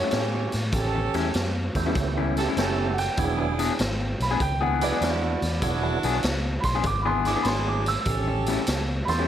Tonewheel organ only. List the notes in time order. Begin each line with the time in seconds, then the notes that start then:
1.76 A3 B3 C#4 E4 G4
2.57 A3 B3 C#4 E4 G4
3.18 F#3 B3 D4 E4 G#4
4.82 F#3 B3 D4 E4 G#4
5.62 F#3 B3 D4 E4 G#4
9.08 B3 C#4 E4 G4 A4